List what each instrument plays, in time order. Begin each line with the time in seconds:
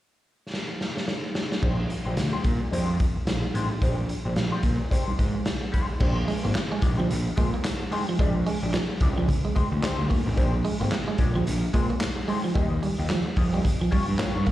0.54 snare
0.81 snare
0.97 snare
1.08 snare
1.35 snare
1.52 snare
1.62 picked electric bass A#1, clean electric guitar G#3 D4 G4 C5, kick, crash
1.79 muted clean electric guitar stroke
1.89 muted clean electric guitar stroke, closed hi-hat
2.05 picked electric bass A#1, clean electric guitar G#3 D4 G4 C5
2.17 picked electric bass D2, muted clean electric guitar stroke, snare, closed hi-hat
2.33 clean electric guitar G#3 D4 G4 C5
2.44 picked electric bass A#2, muted clean electric guitar stroke, kick, closed hi-hat
2.61 muted clean electric guitar stroke
2.71 picked electric bass F2, clean electric guitar G#3 D4 G4 C5, closed hi-hat
3.00 kick, closed hi-hat
3.16 muted clean electric guitar stroke
3.27 picked electric bass A#1, muted clean electric guitar stroke, snare, closed hi-hat
3.44 muted clean electric guitar stroke
3.54 picked electric bass A1, clean electric guitar G#3 D4 G4 C5, closed hi-hat
3.71 muted clean electric guitar stroke
3.81 picked electric bass A#1, clean electric guitar G#3 D4 G4 C5, kick, closed hi-hat
3.98 muted clean electric guitar stroke
4.09 muted clean electric guitar stroke, closed hi-hat
4.25 picked electric bass A#1, clean electric guitar G#3 D4 G4 C5
4.36 picked electric bass A#1, snare, closed hi-hat
4.52 clean electric guitar G#3 D4 G4 C5
4.63 picked electric bass A#2, kick, closed hi-hat
4.80 muted clean electric guitar stroke
4.91 clean electric guitar G#3 D4 G4 C5, kick, closed hi-hat
5.08 muted picked electric bass stroke
5.18 picked electric bass G#2, muted clean electric guitar stroke, kick, closed hi-hat
5.34 muted clean electric guitar stroke
5.45 snare, closed hi-hat
5.61 muted clean electric guitar stroke
5.72 clean electric guitar G#3 D4 G4 C5, kick, closed hi-hat
5.89 muted clean electric guitar stroke
6.00 picked electric bass A#1, clean electric guitar G#3 D4 G4 C5, kick, crash, muted conga
6.17 muted clean electric guitar stroke
6.27 clean electric guitar G#3, muted clean electric guitar stroke, open hi-hat
6.43 picked electric bass G#1, clean electric guitar G#3 A#3 D4 G4 C5
6.55 snare, clap, closed hi-hat, high conga
6.71 clean electric guitar G#3, muted clean electric guitar stroke
6.81 picked electric bass A#1, clean electric guitar G#3 D4 G4 D5, muted clean electric guitar stroke, kick, closed hi-hat
6.97 clean electric guitar F3 G#3 D4 G4 C5, low conga
7.09 picked electric bass A#1, muted clean electric guitar stroke, closed hi-hat, muted conga
7.36 picked electric bass A#2, clean electric guitar G#3 D4 G4 C5, kick, closed hi-hat, muted conga
7.54 clean electric guitar A#3, muted clean electric guitar stroke
7.64 muted clean electric guitar stroke, snare, clap, closed hi-hat, high conga
7.80 muted clean electric guitar stroke
7.91 clean electric guitar G#3 D4 G4 C5, open hi-hat, high conga
8.08 clean electric guitar F3, muted clean electric guitar stroke
8.19 picked electric bass A#1, clean electric guitar G#3 D4 G4 D5, kick, closed hi-hat, muted conga
8.46 clean electric guitar G#3, muted clean electric guitar stroke, open hi-hat
8.63 picked electric bass A#1, clean electric guitar G#3 D4 G4 D5, muted clean electric guitar stroke
8.73 clean electric guitar F3, muted clean electric guitar stroke, snare, clap, closed hi-hat, high conga
8.90 muted clean electric guitar stroke
9.00 picked electric bass C#2, clean electric guitar G#3 D4 G4 D5, muted clean electric guitar stroke, kick, closed hi-hat
9.17 clean electric guitar F3 G#3 D4 G4 D5
9.28 muted clean electric guitar stroke, kick, closed hi-hat, muted conga, low conga
9.45 clean electric guitar G#3
9.55 clean electric guitar G#3 D4 G4 C5, muted picked electric bass stroke, kick, closed hi-hat, muted conga
9.72 picked electric bass D2, muted clean electric guitar stroke
9.82 clean electric guitar G#3 D4 G4 C5, muted picked electric bass stroke, snare, clap, closed hi-hat, high conga
9.99 picked electric bass D2
10.10 clean electric guitar A#3, kick, open hi-hat, high conga
10.26 picked electric bass A1, muted clean electric guitar stroke
10.36 picked electric bass A#1, clean electric guitar G#3 D4 G4 C5, kick, closed hi-hat, muted conga
10.54 muted clean electric guitar stroke
10.64 clean electric guitar G#3, muted clean electric guitar stroke, open hi-hat
10.80 picked electric bass G#1, clean electric guitar G#3 A#3 D4 G4 C5
10.91 snare, clap, closed hi-hat, high conga
11.08 clean electric guitar G#3, muted clean electric guitar stroke
11.18 picked electric bass A#1, clean electric guitar G#3 D4 G4 D5, muted clean electric guitar stroke, kick, closed hi-hat
11.36 clean electric guitar F3 G#3 D4 G4 C5, low conga
11.46 picked electric bass A#1, muted clean electric guitar stroke, closed hi-hat
11.73 picked electric bass A#2, clean electric guitar G#3 D4 G4 C5, kick, closed hi-hat, muted conga
11.90 clean electric guitar A#3, muted clean electric guitar stroke
12.00 muted clean electric guitar stroke, snare, clap, closed hi-hat, high conga
12.17 muted clean electric guitar stroke
12.28 clean electric guitar G#3 D4 G4 C5, open hi-hat, high conga
12.44 clean electric guitar F3, muted clean electric guitar stroke
12.55 picked electric bass D#2, clean electric guitar G3 A#3 F4 G4 D#5, kick, closed hi-hat, muted conga
12.82 clean electric guitar G3, muted clean electric guitar stroke, open hi-hat
12.98 picked electric bass D#2, clean electric guitar A#3 F4 G4 D#5, muted clean electric guitar stroke
13.09 clean electric guitar F3, snare, clap, closed hi-hat, high conga
13.26 muted clean electric guitar stroke
13.36 picked electric bass F2, clean electric guitar A#3 F4 G4 D#5, muted clean electric guitar stroke, kick, open hi-hat
13.53 clean electric guitar G3 A#3 F4 G4 D#5
13.63 muted clean electric guitar stroke, kick, closed hi-hat, muted conga, low conga
13.80 clean electric guitar F3, muted clean electric guitar stroke
13.91 clean electric guitar G3 A#3 F4 G4 C#5, muted picked electric bass stroke, kick, open hi-hat, muted conga
14.08 picked electric bass G2, muted clean electric guitar stroke
14.18 clean electric guitar A#3 F4 G4 C#5, muted picked electric bass stroke, snare, clap, closed hi-hat, high conga
14.36 picked electric bass G2
14.46 clean electric guitar A#3, muted clean electric guitar stroke, kick, open hi-hat, high conga